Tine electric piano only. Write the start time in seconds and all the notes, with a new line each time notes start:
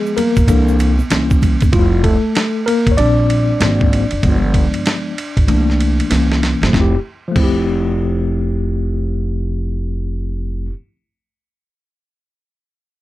Already playing: F3 G#3 B3 G#4
0.17 A#3 A#4
0.48 E3 A#3 D4 A4
1.11 E3 A#3 C#4
1.73 F3 G3 A3 E4 F4
2.04 A3 A4
2.66 A#3 A#4
2.92 C#5
2.97 G3 C4 D4 D5
3.60 F#3 A#3 C4
4.22 F3 G#3 B3
5.48 E3 A3 A#3 D4
6.10 E3 A#3 C#4
6.65 F3 A3
6.73 C4 E4
6.81 G4
7.28 F3
7.32 A3 C4
7.40 E4 G4